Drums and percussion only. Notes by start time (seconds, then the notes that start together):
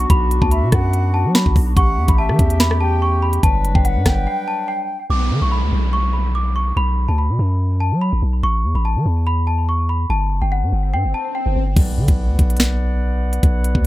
0.10 kick, closed hi-hat
0.31 closed hi-hat
0.42 kick
0.51 closed hi-hat
0.72 kick, cross-stick, closed hi-hat
0.93 closed hi-hat
1.35 snare
1.46 kick
1.56 kick, open hi-hat
1.77 kick, closed hi-hat
2.08 kick, closed hi-hat
2.29 cross-stick
2.39 kick, closed hi-hat
2.50 closed hi-hat
2.60 snare, closed hi-hat
2.71 cross-stick
3.33 closed hi-hat
3.43 kick, closed hi-hat
3.65 closed hi-hat
3.75 kick
3.85 closed hi-hat
4.06 kick, cross-stick, snare, closed hi-hat
11.77 kick, closed hi-hat, crash
12.08 kick, closed hi-hat
12.39 kick, closed hi-hat
12.50 closed hi-hat
12.57 snare, closed hi-hat
12.63 closed hi-hat
13.33 closed hi-hat
13.43 kick, closed hi-hat
13.64 closed hi-hat
13.75 kick